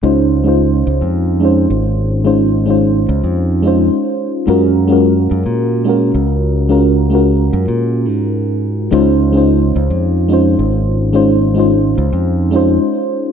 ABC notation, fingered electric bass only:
X:1
M:4/4
L:1/16
Q:"Swing 16ths" 1/4=108
K:Db
V:1 name="Fingered electric bass" clef=bass
D,,6 D,, F,,4- F,, A,,,4- | A,,,6 D,, F,,4- F,, z4 | G,,6 G,, B,,4- B,, D,,4- | D,,6 G,, B,,3 A,,6 |
D,,6 D,, F,,4- F,, A,,,4- | A,,,6 D,, F,,4- F,, z4 |]